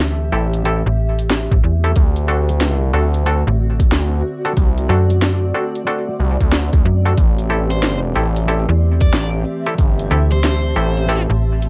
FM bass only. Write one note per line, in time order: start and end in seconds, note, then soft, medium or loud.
0.00 0.31 D2 medium
0.86 1.48 A1 medium
1.51 1.61 A1 loud
1.63 1.94 E2 loud
3.47 3.90 A1 loud
4.89 5.53 F#2 medium
6.85 7.16 F#2 loud
8.69 9.11 E2 medium
10.11 10.75 D2 loud
11.30 11.69 A1 medium